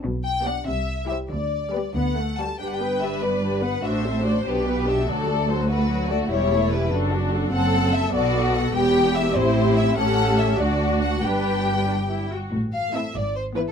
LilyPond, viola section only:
\new Staff \with { instrumentName = "Viola section" } { \time 6/8 \key g \major \tempo 4. = 97 r4 <b d'>8 r4 <g e'>8 | r4 <g b>8 b8 a8 g8 | <d' g'>8 <b b'>8 <d' g'>8 <b b'>8 <d' g'>8 <b b'>8 | <d' fis'>8 <c' a'>8 <d' fis'>8 <d' g'>8 <b b'>8 <d' g'>8 |
<fis fis'>8 <a a'>8 <fis fis'>8 <a a'>8 <fis fis'>8 <a a'>8 | <g g'>8 <a a'>8 <g g'>8 <fis' a'>8 <d' fis'>8 <fis' a'>8 | <c' a'>4. <b a'>4. | <b g'>4. <c' g'>4. |
<cis' g'>4. <d' fis'>4. | <d' b'>4. d'8 e'8 fis'8 | \key e \phrygian r4 <a c'>8 r4 <e b>8 | }